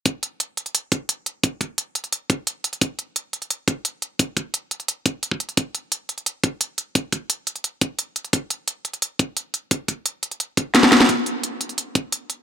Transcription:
\new DrumStaff \with { instrumentName = "Drums" } \drummode { \time 4/4 \tempo 4 = 174 <hh bd>8 hh8 hh8 hh16 hh16 hh8 <hh bd>8 hh8 hh8 | <hh bd>8 <hh bd>8 hh8 hh16 hh16 hh8 <hh bd>8 hh8 hh16 hh16 | <hh bd>8 hh8 hh8 hh16 hh16 hh8 <hh bd>8 hh8 hh8 | <hh bd>8 <hh bd>8 hh8 hh16 hh16 hh8 <hh bd>8 hh16 bd16 hh16 hh16 |
<hh bd>8 hh8 hh8 hh16 hh16 hh8 <hh bd>8 hh8 hh8 | <hh bd>8 <hh bd>8 hh8 hh16 hh16 hh8 <hh bd>8 hh8 hh16 hh16 | <hh bd>8 hh8 hh8 hh16 hh16 hh8 <hh bd>8 hh8 hh8 | <hh bd>8 <hh bd>8 hh8 hh16 hh16 hh8 <hh bd>8 <hh sn>16 <hh bd sn>16 <hh sn>16 <hh sn>16 |
<hh bd>8 hh8 hh8 hh16 hh16 hh8 <hh bd>8 hh8 hh8 | }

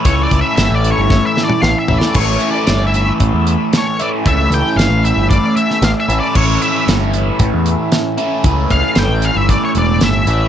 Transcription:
<<
  \new Staff \with { instrumentName = "Lead electric guitar" } { \time 4/4 \key a \major \tempo 4 = 114 \tuplet 3/2 { cis''8 d''8 e''8 e''8 d''8 cis''8~ cis''8 e''8 d''8 f''8 e''8 d''8 } | \tuplet 3/2 { cis''4 d''8~ d''8 e''8. r16 } r4 cis''8 d''8 | e''8 g''8 f''8 e''8 d''8 e''8 \tuplet 3/2 { f''8 e''8 d''8 } | cis''8 e''8 r2. |
r8 f''8 g''8 f''16 e''16 d''16 cis''16 d''8 e''4 | }
  \new Staff \with { instrumentName = "Overdriven electric guitar" } { \time 4/4 \key a \major <a, e a cis' e'>2.~ <a, e a cis' e'>8 <a, e a cis' e'>8 | <a, e a cis' e'>2.~ <a, e a cis' e'>8 <a, e a cis' e'>8 | <a, e a cis' e'>2.~ <a, e a cis' e'>8 <a, e a cis' e'>8 | <a, e a cis' e'>2.~ <a, e a cis' e'>8 <a, e a cis' e'>8 |
<a, e a cis' e'>2.~ <a, e a cis' e'>8 <a, e a cis' e'>8 | }
  \new Staff \with { instrumentName = "Picked electric bass" } { \clef bass \time 4/4 \key a \major cis,8 cis,16 r16 g,,16 a,,8 g,,8 r8. a,,16 r16 a,,16 r16 | a,,8 r8 g,,4 a,,16 e,8 r4 r16 | cis,8 cis,16 r16 g,,16 a,,8 g,,8 r8. a,,16 r16 a,,16 r16 | a,,8 r8 g,,4 a,,16 e,8 r4 r16 |
cis,8 cis,16 r16 g,,16 a,,8 g,,8 r16 e,,8 g,,8 a,,8 | }
  \new DrumStaff \with { instrumentName = "Drums" } \drummode { \time 4/4 <hh bd>8 <hh bd>8 <hh sn>8 hh8 <bd sn>8 sn16 toml16 sn8 tomfh16 sn16 | <cymc bd>8 hh8 <hh sn>8 hh8 <hh bd>8 hh8 <hh sn>8 hh8 | <hh bd>8 hh8 <hh sn>8 hh8 <hh bd>8 hh16 sn16 <hh sn>8 hh8 | <cymc bd>8 hh8 <hh sn>8 hh8 <hh bd>8 hh8 <hh sn>8 hh8 |
<hh bd>8 <hh bd>8 <hh sn>8 hh8 <hh bd>8 hh8 <hh sn>8 hh8 | }
>>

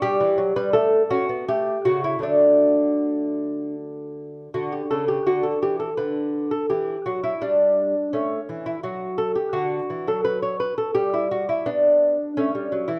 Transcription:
<<
  \new Staff \with { instrumentName = "Lute" } { \time 3/4 \key d \major \tempo 4 = 84 g'8. b'16 a'8 fis'8 g'8 fis'16 e'16 | d'2 r4 | fis'16 g'16 a'16 g'16 fis'16 a'16 g'16 a'16 b'8. a'16 | g'8 fis'16 e'16 d'4 cis'8. e'16 |
fis'8 a'16 g'16 fis'8. a'16 b'16 cis''16 b'16 a'16 | g'16 e'16 fis'16 e'16 d'4 cis'8. e'16 | }
  \new Staff \with { instrumentName = "Lute" } { \clef bass \time 3/4 \key d \major g16 e16 fis16 g16 a8 cis'16 b16 a8 cis8 | <d fis a>2. | d8 cis8 d8 e8 d4 | e8 fis8 g4 a8 e8 |
fis4 d8 e16 fis4~ fis16 | g4 b4 a16 g16 fis16 e16 | }
>>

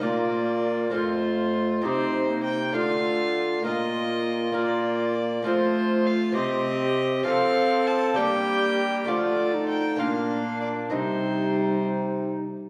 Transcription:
<<
  \new Staff \with { instrumentName = "Violin" } { \time 6/8 \key c \dorian \tempo 4. = 66 d''4. c''4. | c''4 g''8 f''4. | ees''4. d''4. | c''4 f''8 ees''4. |
f''4 a''8 g''4. | d''4 g''8 f''4 d''8 | c''4. r4. | }
  \new Staff \with { instrumentName = "Recorder" } { \time 6/8 \key c \dorian f'4. f'4. | ees'4. f'4. | f'4. f'4. | f'4. g'4. |
a'4. g'4. | f'8. ees'8. d'4. | ees'2~ ees'8 r8 | }
  \new Staff \with { instrumentName = "Lute" } { \time 6/8 \key c \dorian <bes f' d''>4. <c' f' a'>4. | <c' ees' g'>4. <a d' f'>4. | <bes f' bes'>4. <bes f' bes'>4. | <c' f' a'>4. <c' g' c''>4. |
<c' f' a'>4. <bes d' g'>4. | <a f' d''>4. <bes d' f'>4. | <c' ees'>2. | }
  \new Staff \with { instrumentName = "Lute" } { \clef bass \time 6/8 \key c \dorian bes,4. f,4. | c4. d4. | bes,2. | f4. c4. |
f4. g4. | f4. bes,4. | c2~ c8 r8 | }
  \new Staff \with { instrumentName = "Viola" } { \time 6/8 \key c \dorian bes4. a4. | c'8. bes8. a4. | bes4. bes4. | a4. c'4. |
c'4. bes4. | a4. bes4. | g2~ g8. r16 | }
  \new Staff \with { instrumentName = "Bassoon" } { \clef bass \time 6/8 \key c \dorian bes,4. f,4. | c4. d4. | bes,2. | f4. c4. |
f4. g4. | d4. bes,4. | c2~ c8 r8 | }
>>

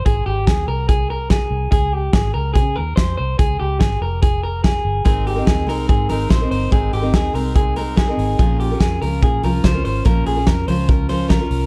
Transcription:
<<
  \new Staff \with { instrumentName = "Clean electric guitar" } { \time 4/4 \key aes \major \tempo 4 = 144 aes'8 g'8 aes'8 bes'8 aes'8 bes'8 aes'4 | aes'8 g'8 aes'8 bes'8 aes'8 bes'8 c''8 c''8 | aes'8 g'8 aes'8 bes'8 aes'8 bes'8 aes'4 | aes'8 g'8 aes'8 bes'8 aes'8 bes'8 c''8 c''8 |
aes'8 g'8 aes'8 bes'8 aes'8 bes'8 aes'4 | aes'8 g'8 aes'8 bes'8 aes'8 bes'8 c''8 c''8 | bes'8 aes'8 bes'8 c''8 bes'8 c''8 bes'4 | }
  \new Staff \with { instrumentName = "Steel-string acoustic guitar" } { \time 4/4 \key aes \major r1 | r1 | r1 | <aes c' ees' bes'>8. <c' ees' bes'>8. <aes c' ees' bes'>4 <aes c' ees' bes'>8 <aes c' ees' bes'>16 <c' ees' bes'>8. |
<aes c' ees' bes'>8. <c' ees' bes'>8. <aes c' ees' bes'>4 <aes c' ees' bes'>8 <aes c' ees' bes'>16 <c' ees' bes'>8. | <bes, f des' f' bes'>8. <des' f' bes'>8. <f des' f' bes'>4 <f des' f' bes'>8 <f des' f' bes'>16 <des' f' bes'>8. | <bes, f des' f' bes'>8. <des' f' bes'>8. <f des' f' bes'>4 <f des' f' bes'>8 <f des' f' bes'>16 <des' f' bes'>8. | }
  \new Staff \with { instrumentName = "Fingered electric bass" } { \clef bass \time 4/4 \key aes \major aes,,8 aes,,8 ees,8 c,2 c,8 | des,4 aes,,8 des,8 des8 ees,8 f,8 c,8 | des,8 des,8 aes,,8 f,,2 g,,8 | aes,,4 ees,8 c,8 aes,8 aes,,8 bes,,8 g,,8 |
aes,,8 aes,,8 r8 c,2 aes,,8 | bes,,4 f,8 des,8 bes,8 c,8 des,8 aes,,8 | bes,,8 bes,,8 f,8 des,2 c,8 | }
  \new DrumStaff \with { instrumentName = "Drums" } \drummode { \time 4/4 <hh bd>4 <hh bd sn>4 <hh bd>4 <hh bd sn>4 | <hh bd>4 <hh bd sn>4 <hh bd>4 <hh bd sn>4 | <hh bd>4 <hh bd sn>4 <hh bd>4 <hh bd sn>4 | <hh bd>8 hho8 <hh bd sn>8 hho8 <hh bd>8 hho8 <hh bd sn>8 hho8 |
<hh bd>8 hho8 <hh bd sn>8 hho8 <hh bd>8 hho8 <hh bd sn>8 hho8 | <hh bd>8 hho8 <hh bd sn>8 hho8 <hh bd>8 hho8 <hh bd sn>8 hho8 | <hh bd>8 hho8 <hh bd sn>8 hho8 <hh bd>8 hho8 <hh bd sn>8 hho8 | }
>>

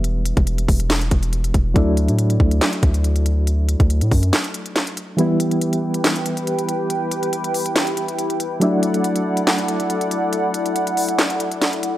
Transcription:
<<
  \new Staff \with { instrumentName = "Analog synth pad" } { \time 4/4 \key d \mixolydian \tempo 4 = 140 << { r1 | r1 | r1 | <g' b' g''>1~ |
<g' b' g''>1 | <a' d'' fis''>1~ | <a' d'' fis''>1 | } \\ { r1 | r1 | r1 | e'1~ |
e'1~ | e'1~ | e'1 | } >> }
  \new Staff \with { instrumentName = "Synth keys" } { \time 4/4 \key d \mixolydian <e g b e'>1 | <fis a d' e'>1~ | <fis a d' e'>1 | <e g b e'>1~ |
<e g b e'>1 | <fis a d' e'>1~ | <fis a d' e'>1 | }
  \new Staff \with { instrumentName = "808-style bass" } { \clef bass \time 4/4 \key d \mixolydian e,,8. e,,8. e,,4 e,,4 e,,8 | d,8. a,8. d,8 r8 d,4.~ | d,8. d,8 a,16 fis,8 r2 | r1 |
r1 | r1 | r1 | }
  \new DrumStaff \with { instrumentName = "Drums" } \drummode { \time 4/4 hh8 hh16 <hh bd>16 hh16 hh16 <hho bd>16 hh16 <hc hh sn>16 hh16 <hh bd>16 hh16 hh16 hh16 <hh bd>8 | <hh bd>8 hh16 hh16 hh16 hh16 bd16 hh16 <hc hh sn>16 hh16 <hh bd>16 hh16 hh16 hh16 hh8 | hh8 hh16 <hh bd>16 hh16 hh16 <hho bd>16 hh16 <hc hh sn>16 hh16 hh16 hh16 <hc hh sn>16 hh16 hh8 | hh8 hh16 hh16 hh16 hh8 hh16 <hc hh sn>16 hh16 hh16 hh16 hh16 hh16 hh8 |
hh8 hh16 hh16 hh16 hh16 hho16 hh16 <hc hh sn>16 hh16 hh16 hh16 hh16 hh16 hh8 | hh8 hh16 hh16 hh16 hh8 hh16 <hc hh sn>16 hh16 hh16 hh16 hh16 hh16 hh8 | hh8 hh16 hh16 hh16 hh16 hho16 hh16 <hc hh sn>16 hh16 hh16 hh16 <hc hh sn>16 hh16 hh8 | }
>>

